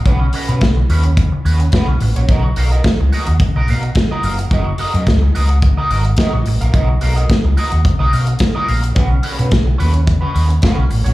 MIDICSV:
0, 0, Header, 1, 5, 480
1, 0, Start_track
1, 0, Tempo, 557103
1, 43, Time_signature, 4, 2, 24, 8
1, 9594, End_track
2, 0, Start_track
2, 0, Title_t, "Clean electric guitar"
2, 0, Program_c, 0, 27
2, 52, Note_on_c, 0, 61, 97
2, 61, Note_on_c, 0, 66, 86
2, 62, Note_on_c, 0, 71, 88
2, 172, Note_off_c, 0, 71, 0
2, 181, Note_off_c, 0, 66, 0
2, 223, Note_off_c, 0, 61, 0
2, 294, Note_on_c, 0, 61, 74
2, 304, Note_on_c, 0, 66, 73
2, 308, Note_on_c, 0, 71, 70
2, 408, Note_off_c, 0, 71, 0
2, 416, Note_off_c, 0, 66, 0
2, 419, Note_on_c, 0, 71, 68
2, 421, Note_off_c, 0, 61, 0
2, 426, Note_on_c, 0, 66, 57
2, 431, Note_on_c, 0, 61, 57
2, 525, Note_off_c, 0, 61, 0
2, 530, Note_off_c, 0, 66, 0
2, 534, Note_off_c, 0, 71, 0
2, 776, Note_on_c, 0, 61, 89
2, 783, Note_on_c, 0, 66, 88
2, 789, Note_on_c, 0, 71, 104
2, 889, Note_off_c, 0, 71, 0
2, 899, Note_off_c, 0, 66, 0
2, 945, Note_off_c, 0, 61, 0
2, 1252, Note_on_c, 0, 61, 78
2, 1259, Note_on_c, 0, 66, 92
2, 1263, Note_on_c, 0, 71, 93
2, 1369, Note_off_c, 0, 71, 0
2, 1379, Note_off_c, 0, 66, 0
2, 1423, Note_off_c, 0, 61, 0
2, 1492, Note_on_c, 0, 61, 84
2, 1500, Note_on_c, 0, 66, 90
2, 1505, Note_on_c, 0, 71, 111
2, 1610, Note_off_c, 0, 71, 0
2, 1617, Note_off_c, 0, 66, 0
2, 1663, Note_off_c, 0, 61, 0
2, 1862, Note_on_c, 0, 73, 54
2, 1870, Note_on_c, 0, 66, 57
2, 1875, Note_on_c, 0, 61, 50
2, 1965, Note_off_c, 0, 66, 0
2, 1976, Note_on_c, 0, 66, 100
2, 1981, Note_off_c, 0, 73, 0
2, 1984, Note_on_c, 0, 70, 106
2, 1989, Note_on_c, 0, 75, 81
2, 1991, Note_off_c, 0, 61, 0
2, 2094, Note_off_c, 0, 75, 0
2, 2103, Note_off_c, 0, 70, 0
2, 2145, Note_off_c, 0, 66, 0
2, 2213, Note_on_c, 0, 66, 65
2, 2221, Note_on_c, 0, 70, 64
2, 2228, Note_on_c, 0, 77, 78
2, 2338, Note_off_c, 0, 70, 0
2, 2338, Note_off_c, 0, 77, 0
2, 2342, Note_on_c, 0, 75, 68
2, 2343, Note_off_c, 0, 66, 0
2, 2349, Note_on_c, 0, 70, 66
2, 2353, Note_on_c, 0, 66, 51
2, 2444, Note_off_c, 0, 66, 0
2, 2448, Note_off_c, 0, 70, 0
2, 2456, Note_off_c, 0, 75, 0
2, 2692, Note_on_c, 0, 66, 96
2, 2701, Note_on_c, 0, 70, 82
2, 2706, Note_on_c, 0, 75, 106
2, 2814, Note_off_c, 0, 75, 0
2, 2823, Note_off_c, 0, 70, 0
2, 2863, Note_off_c, 0, 66, 0
2, 3068, Note_on_c, 0, 75, 78
2, 3075, Note_on_c, 0, 70, 81
2, 3080, Note_on_c, 0, 66, 61
2, 3169, Note_off_c, 0, 66, 0
2, 3177, Note_off_c, 0, 70, 0
2, 3179, Note_on_c, 0, 66, 69
2, 3188, Note_off_c, 0, 75, 0
2, 3188, Note_on_c, 0, 70, 65
2, 3191, Note_on_c, 0, 77, 73
2, 3302, Note_off_c, 0, 77, 0
2, 3304, Note_off_c, 0, 70, 0
2, 3312, Note_off_c, 0, 66, 0
2, 3543, Note_on_c, 0, 75, 72
2, 3550, Note_on_c, 0, 70, 69
2, 3553, Note_on_c, 0, 66, 64
2, 3640, Note_off_c, 0, 66, 0
2, 3648, Note_off_c, 0, 70, 0
2, 3650, Note_on_c, 0, 66, 65
2, 3658, Note_on_c, 0, 70, 76
2, 3661, Note_off_c, 0, 75, 0
2, 3664, Note_on_c, 0, 77, 69
2, 3776, Note_off_c, 0, 77, 0
2, 3777, Note_off_c, 0, 70, 0
2, 3788, Note_off_c, 0, 66, 0
2, 3894, Note_on_c, 0, 66, 85
2, 3901, Note_on_c, 0, 70, 87
2, 3908, Note_on_c, 0, 75, 93
2, 4013, Note_off_c, 0, 75, 0
2, 4022, Note_off_c, 0, 70, 0
2, 4064, Note_off_c, 0, 66, 0
2, 4130, Note_on_c, 0, 66, 79
2, 4137, Note_on_c, 0, 70, 77
2, 4142, Note_on_c, 0, 75, 77
2, 4248, Note_off_c, 0, 75, 0
2, 4255, Note_off_c, 0, 70, 0
2, 4258, Note_on_c, 0, 75, 70
2, 4260, Note_off_c, 0, 66, 0
2, 4266, Note_on_c, 0, 70, 56
2, 4270, Note_on_c, 0, 66, 56
2, 4360, Note_off_c, 0, 66, 0
2, 4365, Note_off_c, 0, 70, 0
2, 4366, Note_off_c, 0, 75, 0
2, 4609, Note_on_c, 0, 66, 97
2, 4616, Note_on_c, 0, 70, 86
2, 4621, Note_on_c, 0, 75, 102
2, 4726, Note_off_c, 0, 75, 0
2, 4736, Note_off_c, 0, 70, 0
2, 4782, Note_off_c, 0, 66, 0
2, 4975, Note_on_c, 0, 75, 72
2, 4981, Note_on_c, 0, 70, 77
2, 4987, Note_on_c, 0, 66, 67
2, 5076, Note_off_c, 0, 66, 0
2, 5087, Note_off_c, 0, 70, 0
2, 5087, Note_on_c, 0, 66, 65
2, 5088, Note_off_c, 0, 75, 0
2, 5097, Note_on_c, 0, 70, 73
2, 5098, Note_on_c, 0, 75, 73
2, 5206, Note_off_c, 0, 75, 0
2, 5213, Note_off_c, 0, 70, 0
2, 5226, Note_off_c, 0, 66, 0
2, 5336, Note_on_c, 0, 66, 87
2, 5342, Note_on_c, 0, 70, 88
2, 5346, Note_on_c, 0, 75, 105
2, 5449, Note_off_c, 0, 75, 0
2, 5456, Note_off_c, 0, 70, 0
2, 5505, Note_off_c, 0, 66, 0
2, 5696, Note_on_c, 0, 77, 68
2, 5704, Note_on_c, 0, 70, 58
2, 5708, Note_on_c, 0, 66, 54
2, 5792, Note_off_c, 0, 66, 0
2, 5800, Note_off_c, 0, 70, 0
2, 5802, Note_on_c, 0, 66, 80
2, 5810, Note_off_c, 0, 77, 0
2, 5810, Note_on_c, 0, 70, 86
2, 5813, Note_on_c, 0, 75, 89
2, 5925, Note_off_c, 0, 75, 0
2, 5934, Note_off_c, 0, 70, 0
2, 5978, Note_off_c, 0, 66, 0
2, 6043, Note_on_c, 0, 66, 69
2, 6052, Note_on_c, 0, 70, 71
2, 6058, Note_on_c, 0, 77, 76
2, 6166, Note_off_c, 0, 70, 0
2, 6166, Note_off_c, 0, 77, 0
2, 6169, Note_on_c, 0, 75, 71
2, 6173, Note_off_c, 0, 66, 0
2, 6176, Note_on_c, 0, 70, 62
2, 6183, Note_on_c, 0, 66, 63
2, 6279, Note_off_c, 0, 66, 0
2, 6282, Note_off_c, 0, 70, 0
2, 6286, Note_off_c, 0, 75, 0
2, 6524, Note_on_c, 0, 66, 98
2, 6532, Note_on_c, 0, 70, 98
2, 6540, Note_on_c, 0, 75, 109
2, 6639, Note_off_c, 0, 75, 0
2, 6647, Note_off_c, 0, 70, 0
2, 6699, Note_off_c, 0, 66, 0
2, 6886, Note_on_c, 0, 75, 86
2, 6893, Note_on_c, 0, 70, 71
2, 6898, Note_on_c, 0, 66, 73
2, 6993, Note_off_c, 0, 66, 0
2, 6996, Note_off_c, 0, 70, 0
2, 7004, Note_on_c, 0, 66, 68
2, 7006, Note_on_c, 0, 70, 66
2, 7009, Note_off_c, 0, 75, 0
2, 7013, Note_on_c, 0, 77, 78
2, 7125, Note_off_c, 0, 70, 0
2, 7125, Note_off_c, 0, 77, 0
2, 7143, Note_off_c, 0, 66, 0
2, 7366, Note_on_c, 0, 75, 79
2, 7372, Note_on_c, 0, 70, 85
2, 7379, Note_on_c, 0, 66, 67
2, 7465, Note_off_c, 0, 66, 0
2, 7470, Note_off_c, 0, 70, 0
2, 7476, Note_on_c, 0, 66, 62
2, 7480, Note_on_c, 0, 70, 78
2, 7486, Note_off_c, 0, 75, 0
2, 7489, Note_on_c, 0, 77, 80
2, 7602, Note_off_c, 0, 77, 0
2, 7605, Note_off_c, 0, 70, 0
2, 7619, Note_off_c, 0, 66, 0
2, 7713, Note_on_c, 0, 61, 80
2, 7721, Note_on_c, 0, 66, 84
2, 7726, Note_on_c, 0, 71, 92
2, 7833, Note_off_c, 0, 71, 0
2, 7840, Note_off_c, 0, 66, 0
2, 7892, Note_off_c, 0, 61, 0
2, 7952, Note_on_c, 0, 61, 73
2, 7960, Note_on_c, 0, 66, 75
2, 7962, Note_on_c, 0, 71, 76
2, 8075, Note_off_c, 0, 71, 0
2, 8085, Note_off_c, 0, 66, 0
2, 8085, Note_on_c, 0, 71, 75
2, 8090, Note_off_c, 0, 61, 0
2, 8095, Note_on_c, 0, 66, 68
2, 8100, Note_on_c, 0, 61, 58
2, 8182, Note_off_c, 0, 61, 0
2, 8186, Note_off_c, 0, 66, 0
2, 8191, Note_off_c, 0, 71, 0
2, 8430, Note_on_c, 0, 61, 91
2, 8439, Note_on_c, 0, 66, 108
2, 8443, Note_on_c, 0, 71, 104
2, 8547, Note_off_c, 0, 71, 0
2, 8556, Note_off_c, 0, 66, 0
2, 8610, Note_off_c, 0, 61, 0
2, 8794, Note_on_c, 0, 71, 67
2, 8802, Note_on_c, 0, 66, 66
2, 8807, Note_on_c, 0, 61, 63
2, 8901, Note_off_c, 0, 61, 0
2, 8904, Note_off_c, 0, 66, 0
2, 8910, Note_off_c, 0, 71, 0
2, 8911, Note_on_c, 0, 61, 70
2, 8914, Note_on_c, 0, 66, 73
2, 8920, Note_on_c, 0, 71, 70
2, 9029, Note_off_c, 0, 71, 0
2, 9037, Note_off_c, 0, 66, 0
2, 9056, Note_off_c, 0, 61, 0
2, 9154, Note_on_c, 0, 61, 82
2, 9162, Note_on_c, 0, 66, 101
2, 9167, Note_on_c, 0, 71, 93
2, 9276, Note_off_c, 0, 71, 0
2, 9283, Note_off_c, 0, 66, 0
2, 9332, Note_off_c, 0, 61, 0
2, 9515, Note_on_c, 0, 73, 68
2, 9522, Note_on_c, 0, 66, 60
2, 9527, Note_on_c, 0, 61, 51
2, 9594, Note_off_c, 0, 61, 0
2, 9594, Note_off_c, 0, 66, 0
2, 9594, Note_off_c, 0, 73, 0
2, 9594, End_track
3, 0, Start_track
3, 0, Title_t, "Fingered electric bass"
3, 0, Program_c, 1, 33
3, 52, Note_on_c, 1, 35, 112
3, 234, Note_off_c, 1, 35, 0
3, 418, Note_on_c, 1, 47, 83
3, 503, Note_off_c, 1, 47, 0
3, 534, Note_on_c, 1, 35, 99
3, 715, Note_off_c, 1, 35, 0
3, 770, Note_on_c, 1, 39, 93
3, 1051, Note_off_c, 1, 39, 0
3, 1249, Note_on_c, 1, 39, 93
3, 1433, Note_off_c, 1, 39, 0
3, 1613, Note_on_c, 1, 35, 84
3, 1700, Note_off_c, 1, 35, 0
3, 1728, Note_on_c, 1, 33, 85
3, 1825, Note_off_c, 1, 33, 0
3, 1861, Note_on_c, 1, 34, 87
3, 1944, Note_off_c, 1, 34, 0
3, 1972, Note_on_c, 1, 35, 115
3, 2154, Note_off_c, 1, 35, 0
3, 2211, Note_on_c, 1, 35, 96
3, 2394, Note_off_c, 1, 35, 0
3, 2582, Note_on_c, 1, 37, 86
3, 2665, Note_off_c, 1, 37, 0
3, 2821, Note_on_c, 1, 39, 81
3, 2905, Note_off_c, 1, 39, 0
3, 3063, Note_on_c, 1, 35, 97
3, 3169, Note_on_c, 1, 47, 105
3, 3182, Note_off_c, 1, 35, 0
3, 3353, Note_off_c, 1, 47, 0
3, 3648, Note_on_c, 1, 30, 100
3, 3832, Note_off_c, 1, 30, 0
3, 3888, Note_on_c, 1, 30, 118
3, 4072, Note_off_c, 1, 30, 0
3, 4256, Note_on_c, 1, 42, 99
3, 4341, Note_off_c, 1, 42, 0
3, 4372, Note_on_c, 1, 37, 76
3, 4554, Note_off_c, 1, 37, 0
3, 4615, Note_on_c, 1, 37, 94
3, 4894, Note_off_c, 1, 37, 0
3, 5086, Note_on_c, 1, 32, 87
3, 5270, Note_off_c, 1, 32, 0
3, 5456, Note_on_c, 1, 34, 86
3, 5541, Note_off_c, 1, 34, 0
3, 5569, Note_on_c, 1, 33, 82
3, 5665, Note_off_c, 1, 33, 0
3, 5699, Note_on_c, 1, 34, 79
3, 5783, Note_off_c, 1, 34, 0
3, 5806, Note_on_c, 1, 35, 119
3, 5990, Note_off_c, 1, 35, 0
3, 6052, Note_on_c, 1, 35, 111
3, 6234, Note_off_c, 1, 35, 0
3, 6413, Note_on_c, 1, 37, 82
3, 6499, Note_off_c, 1, 37, 0
3, 6655, Note_on_c, 1, 39, 93
3, 6740, Note_off_c, 1, 39, 0
3, 6893, Note_on_c, 1, 35, 101
3, 6979, Note_off_c, 1, 35, 0
3, 7009, Note_on_c, 1, 47, 81
3, 7192, Note_off_c, 1, 47, 0
3, 7486, Note_on_c, 1, 34, 88
3, 7670, Note_off_c, 1, 34, 0
3, 7723, Note_on_c, 1, 35, 109
3, 7908, Note_off_c, 1, 35, 0
3, 8093, Note_on_c, 1, 47, 84
3, 8178, Note_off_c, 1, 47, 0
3, 8204, Note_on_c, 1, 35, 88
3, 8388, Note_off_c, 1, 35, 0
3, 8447, Note_on_c, 1, 39, 101
3, 8728, Note_off_c, 1, 39, 0
3, 8920, Note_on_c, 1, 39, 89
3, 9105, Note_off_c, 1, 39, 0
3, 9287, Note_on_c, 1, 35, 82
3, 9374, Note_off_c, 1, 35, 0
3, 9400, Note_on_c, 1, 33, 93
3, 9498, Note_off_c, 1, 33, 0
3, 9525, Note_on_c, 1, 34, 84
3, 9594, Note_off_c, 1, 34, 0
3, 9594, End_track
4, 0, Start_track
4, 0, Title_t, "Muted clean electric guitar strokes"
4, 182, Note_on_c, 9, 29, 49
4, 268, Note_off_c, 9, 29, 0
4, 535, Note_on_c, 9, 29, 38
4, 621, Note_off_c, 9, 29, 0
4, 666, Note_on_c, 9, 29, 40
4, 752, Note_off_c, 9, 29, 0
4, 899, Note_on_c, 9, 29, 40
4, 985, Note_off_c, 9, 29, 0
4, 1140, Note_on_c, 9, 29, 39
4, 1226, Note_off_c, 9, 29, 0
4, 1379, Note_on_c, 9, 29, 45
4, 1465, Note_off_c, 9, 29, 0
4, 1620, Note_on_c, 9, 29, 43
4, 1706, Note_off_c, 9, 29, 0
4, 1738, Note_on_c, 9, 29, 47
4, 1824, Note_off_c, 9, 29, 0
4, 2104, Note_on_c, 9, 29, 46
4, 2190, Note_off_c, 9, 29, 0
4, 2455, Note_on_c, 9, 29, 51
4, 2541, Note_off_c, 9, 29, 0
4, 2585, Note_on_c, 9, 29, 49
4, 2672, Note_off_c, 9, 29, 0
4, 2824, Note_on_c, 9, 29, 44
4, 2910, Note_off_c, 9, 29, 0
4, 2938, Note_on_c, 9, 29, 51
4, 3025, Note_off_c, 9, 29, 0
4, 3305, Note_on_c, 9, 29, 48
4, 3391, Note_off_c, 9, 29, 0
4, 3417, Note_on_c, 9, 29, 40
4, 3503, Note_off_c, 9, 29, 0
4, 3779, Note_on_c, 9, 29, 47
4, 3865, Note_off_c, 9, 29, 0
4, 4024, Note_on_c, 9, 29, 47
4, 4110, Note_off_c, 9, 29, 0
4, 4370, Note_on_c, 9, 29, 46
4, 4457, Note_off_c, 9, 29, 0
4, 4496, Note_on_c, 9, 29, 44
4, 4582, Note_off_c, 9, 29, 0
4, 4737, Note_on_c, 9, 29, 43
4, 4823, Note_off_c, 9, 29, 0
4, 4843, Note_on_c, 9, 29, 40
4, 4930, Note_off_c, 9, 29, 0
4, 5216, Note_on_c, 9, 29, 47
4, 5302, Note_off_c, 9, 29, 0
4, 5459, Note_on_c, 9, 29, 45
4, 5546, Note_off_c, 9, 29, 0
4, 5576, Note_on_c, 9, 29, 45
4, 5662, Note_off_c, 9, 29, 0
4, 5935, Note_on_c, 9, 29, 57
4, 6022, Note_off_c, 9, 29, 0
4, 6290, Note_on_c, 9, 29, 40
4, 6376, Note_off_c, 9, 29, 0
4, 6415, Note_on_c, 9, 29, 42
4, 6501, Note_off_c, 9, 29, 0
4, 6650, Note_on_c, 9, 29, 47
4, 6736, Note_off_c, 9, 29, 0
4, 6763, Note_on_c, 9, 29, 38
4, 6849, Note_off_c, 9, 29, 0
4, 7129, Note_on_c, 9, 29, 48
4, 7215, Note_off_c, 9, 29, 0
4, 7246, Note_on_c, 9, 29, 45
4, 7332, Note_off_c, 9, 29, 0
4, 7606, Note_on_c, 9, 29, 44
4, 7692, Note_off_c, 9, 29, 0
4, 7843, Note_on_c, 9, 29, 59
4, 7929, Note_off_c, 9, 29, 0
4, 8192, Note_on_c, 9, 29, 41
4, 8278, Note_off_c, 9, 29, 0
4, 8320, Note_on_c, 9, 29, 44
4, 8406, Note_off_c, 9, 29, 0
4, 8557, Note_on_c, 9, 29, 49
4, 8643, Note_off_c, 9, 29, 0
4, 8671, Note_on_c, 9, 29, 48
4, 8757, Note_off_c, 9, 29, 0
4, 9040, Note_on_c, 9, 29, 52
4, 9126, Note_off_c, 9, 29, 0
4, 9286, Note_on_c, 9, 29, 48
4, 9372, Note_off_c, 9, 29, 0
4, 9394, Note_on_c, 9, 29, 42
4, 9480, Note_off_c, 9, 29, 0
4, 9594, End_track
5, 0, Start_track
5, 0, Title_t, "Drums"
5, 48, Note_on_c, 9, 36, 113
5, 48, Note_on_c, 9, 42, 72
5, 134, Note_off_c, 9, 36, 0
5, 134, Note_off_c, 9, 42, 0
5, 282, Note_on_c, 9, 46, 90
5, 369, Note_off_c, 9, 46, 0
5, 420, Note_on_c, 9, 42, 44
5, 506, Note_off_c, 9, 42, 0
5, 526, Note_on_c, 9, 42, 71
5, 530, Note_on_c, 9, 36, 114
5, 540, Note_on_c, 9, 38, 112
5, 612, Note_off_c, 9, 42, 0
5, 616, Note_off_c, 9, 36, 0
5, 626, Note_off_c, 9, 38, 0
5, 772, Note_on_c, 9, 46, 69
5, 859, Note_off_c, 9, 46, 0
5, 891, Note_on_c, 9, 42, 49
5, 977, Note_off_c, 9, 42, 0
5, 1009, Note_on_c, 9, 36, 124
5, 1012, Note_on_c, 9, 42, 69
5, 1095, Note_off_c, 9, 36, 0
5, 1098, Note_off_c, 9, 42, 0
5, 1255, Note_on_c, 9, 46, 55
5, 1341, Note_off_c, 9, 46, 0
5, 1377, Note_on_c, 9, 42, 44
5, 1463, Note_off_c, 9, 42, 0
5, 1482, Note_on_c, 9, 42, 64
5, 1490, Note_on_c, 9, 36, 117
5, 1500, Note_on_c, 9, 38, 113
5, 1568, Note_off_c, 9, 42, 0
5, 1576, Note_off_c, 9, 36, 0
5, 1586, Note_off_c, 9, 38, 0
5, 1727, Note_on_c, 9, 46, 69
5, 1813, Note_off_c, 9, 46, 0
5, 1862, Note_on_c, 9, 42, 56
5, 1949, Note_off_c, 9, 42, 0
5, 1970, Note_on_c, 9, 36, 103
5, 1970, Note_on_c, 9, 42, 72
5, 2056, Note_off_c, 9, 36, 0
5, 2056, Note_off_c, 9, 42, 0
5, 2207, Note_on_c, 9, 46, 88
5, 2293, Note_off_c, 9, 46, 0
5, 2345, Note_on_c, 9, 42, 41
5, 2431, Note_off_c, 9, 42, 0
5, 2448, Note_on_c, 9, 42, 76
5, 2450, Note_on_c, 9, 36, 123
5, 2463, Note_on_c, 9, 38, 125
5, 2535, Note_off_c, 9, 42, 0
5, 2536, Note_off_c, 9, 36, 0
5, 2549, Note_off_c, 9, 38, 0
5, 2695, Note_on_c, 9, 46, 64
5, 2781, Note_off_c, 9, 46, 0
5, 2814, Note_on_c, 9, 42, 52
5, 2900, Note_off_c, 9, 42, 0
5, 2928, Note_on_c, 9, 36, 117
5, 2931, Note_on_c, 9, 42, 69
5, 3014, Note_off_c, 9, 36, 0
5, 3017, Note_off_c, 9, 42, 0
5, 3169, Note_on_c, 9, 46, 53
5, 3256, Note_off_c, 9, 46, 0
5, 3298, Note_on_c, 9, 42, 42
5, 3384, Note_off_c, 9, 42, 0
5, 3403, Note_on_c, 9, 42, 72
5, 3408, Note_on_c, 9, 36, 124
5, 3421, Note_on_c, 9, 38, 110
5, 3489, Note_off_c, 9, 42, 0
5, 3494, Note_off_c, 9, 36, 0
5, 3507, Note_off_c, 9, 38, 0
5, 3647, Note_on_c, 9, 46, 68
5, 3733, Note_off_c, 9, 46, 0
5, 3780, Note_on_c, 9, 42, 54
5, 3867, Note_off_c, 9, 42, 0
5, 3886, Note_on_c, 9, 36, 117
5, 3886, Note_on_c, 9, 42, 61
5, 3972, Note_off_c, 9, 42, 0
5, 3973, Note_off_c, 9, 36, 0
5, 4119, Note_on_c, 9, 46, 87
5, 4205, Note_off_c, 9, 46, 0
5, 4261, Note_on_c, 9, 42, 49
5, 4347, Note_off_c, 9, 42, 0
5, 4365, Note_on_c, 9, 42, 67
5, 4367, Note_on_c, 9, 36, 127
5, 4379, Note_on_c, 9, 38, 116
5, 4451, Note_off_c, 9, 42, 0
5, 4453, Note_off_c, 9, 36, 0
5, 4465, Note_off_c, 9, 38, 0
5, 4613, Note_on_c, 9, 46, 68
5, 4699, Note_off_c, 9, 46, 0
5, 4730, Note_on_c, 9, 42, 49
5, 4816, Note_off_c, 9, 42, 0
5, 4845, Note_on_c, 9, 36, 117
5, 4847, Note_on_c, 9, 42, 71
5, 4932, Note_off_c, 9, 36, 0
5, 4934, Note_off_c, 9, 42, 0
5, 5089, Note_on_c, 9, 46, 61
5, 5175, Note_off_c, 9, 46, 0
5, 5210, Note_on_c, 9, 42, 43
5, 5296, Note_off_c, 9, 42, 0
5, 5312, Note_on_c, 9, 42, 69
5, 5323, Note_on_c, 9, 36, 127
5, 5330, Note_on_c, 9, 38, 112
5, 5398, Note_off_c, 9, 42, 0
5, 5410, Note_off_c, 9, 36, 0
5, 5416, Note_off_c, 9, 38, 0
5, 5563, Note_on_c, 9, 46, 60
5, 5649, Note_off_c, 9, 46, 0
5, 5699, Note_on_c, 9, 42, 49
5, 5785, Note_off_c, 9, 42, 0
5, 5805, Note_on_c, 9, 36, 103
5, 5808, Note_on_c, 9, 42, 70
5, 5891, Note_off_c, 9, 36, 0
5, 5894, Note_off_c, 9, 42, 0
5, 6040, Note_on_c, 9, 46, 86
5, 6126, Note_off_c, 9, 46, 0
5, 6183, Note_on_c, 9, 42, 42
5, 6269, Note_off_c, 9, 42, 0
5, 6286, Note_on_c, 9, 36, 114
5, 6286, Note_on_c, 9, 42, 67
5, 6300, Note_on_c, 9, 38, 118
5, 6372, Note_off_c, 9, 36, 0
5, 6372, Note_off_c, 9, 42, 0
5, 6386, Note_off_c, 9, 38, 0
5, 6526, Note_on_c, 9, 46, 63
5, 6612, Note_off_c, 9, 46, 0
5, 6649, Note_on_c, 9, 42, 52
5, 6735, Note_off_c, 9, 42, 0
5, 6763, Note_on_c, 9, 36, 113
5, 6764, Note_on_c, 9, 42, 66
5, 6849, Note_off_c, 9, 36, 0
5, 6850, Note_off_c, 9, 42, 0
5, 7005, Note_on_c, 9, 46, 60
5, 7091, Note_off_c, 9, 46, 0
5, 7124, Note_on_c, 9, 42, 48
5, 7210, Note_off_c, 9, 42, 0
5, 7228, Note_on_c, 9, 42, 70
5, 7240, Note_on_c, 9, 36, 123
5, 7246, Note_on_c, 9, 38, 114
5, 7314, Note_off_c, 9, 42, 0
5, 7326, Note_off_c, 9, 36, 0
5, 7332, Note_off_c, 9, 38, 0
5, 7482, Note_on_c, 9, 46, 64
5, 7568, Note_off_c, 9, 46, 0
5, 7612, Note_on_c, 9, 42, 57
5, 7698, Note_off_c, 9, 42, 0
5, 7719, Note_on_c, 9, 42, 69
5, 7722, Note_on_c, 9, 36, 120
5, 7805, Note_off_c, 9, 42, 0
5, 7808, Note_off_c, 9, 36, 0
5, 7954, Note_on_c, 9, 46, 88
5, 8040, Note_off_c, 9, 46, 0
5, 8091, Note_on_c, 9, 42, 48
5, 8177, Note_off_c, 9, 42, 0
5, 8197, Note_on_c, 9, 42, 68
5, 8201, Note_on_c, 9, 36, 112
5, 8211, Note_on_c, 9, 38, 127
5, 8283, Note_off_c, 9, 42, 0
5, 8287, Note_off_c, 9, 36, 0
5, 8298, Note_off_c, 9, 38, 0
5, 8445, Note_on_c, 9, 46, 62
5, 8531, Note_off_c, 9, 46, 0
5, 8562, Note_on_c, 9, 42, 53
5, 8648, Note_off_c, 9, 42, 0
5, 8680, Note_on_c, 9, 36, 118
5, 8682, Note_on_c, 9, 42, 71
5, 8766, Note_off_c, 9, 36, 0
5, 8768, Note_off_c, 9, 42, 0
5, 8923, Note_on_c, 9, 46, 59
5, 9009, Note_off_c, 9, 46, 0
5, 9049, Note_on_c, 9, 42, 45
5, 9135, Note_off_c, 9, 42, 0
5, 9150, Note_on_c, 9, 42, 66
5, 9159, Note_on_c, 9, 36, 124
5, 9168, Note_on_c, 9, 38, 101
5, 9236, Note_off_c, 9, 42, 0
5, 9245, Note_off_c, 9, 36, 0
5, 9254, Note_off_c, 9, 38, 0
5, 9396, Note_on_c, 9, 46, 64
5, 9482, Note_off_c, 9, 46, 0
5, 9529, Note_on_c, 9, 42, 52
5, 9594, Note_off_c, 9, 42, 0
5, 9594, End_track
0, 0, End_of_file